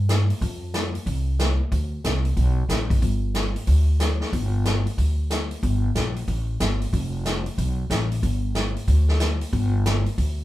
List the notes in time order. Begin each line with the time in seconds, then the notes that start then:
Already playing: G2
0.09 snare, closed hi-hat
0.30 open hi-hat
0.41 F2, kick, open hi-hat
0.74 snare, closed hi-hat
0.95 open hi-hat
1.06 C2, kick, open hi-hat
1.39 snare, closed hi-hat
1.72 D2, kick, open hi-hat
2.04 C2, snare, closed hi-hat
2.25 open hi-hat
2.37 B1, kick, open hi-hat
2.69 A1, snare, closed hi-hat
2.90 kick, open hi-hat
3.02 G1, kick, open hi-hat
3.35 snare, closed hi-hat
3.56 open hi-hat
3.67 D2, kick, open hi-hat
4.00 snare, closed hi-hat
4.21 snare
4.33 G1, kick, open hi-hat
4.65 snare, closed hi-hat
4.87 open hi-hat
4.98 D2, kick, open hi-hat
5.30 snare, closed hi-hat
5.51 open hi-hat
5.63 G1, kick, open hi-hat
5.95 A#1, snare, closed hi-hat
6.16 open hi-hat
6.28 A1, kick, open hi-hat
6.60 G1, snare, closed hi-hat
6.82 open hi-hat
6.93 F1, kick, open hi-hat
7.25 snare, closed hi-hat
7.46 open hi-hat
7.58 B1, kick, open hi-hat
7.90 A1, snare, closed hi-hat
8.12 open hi-hat
8.23 G1, kick, open hi-hat
8.55 snare, closed hi-hat
8.76 open hi-hat
8.87 D2, kick, open hi-hat
9.09 snare
9.20 snare, closed hi-hat
9.41 open hi-hat
9.53 G1, kick, open hi-hat
9.86 snare, closed hi-hat
10.06 open hi-hat
10.18 D2, kick, open hi-hat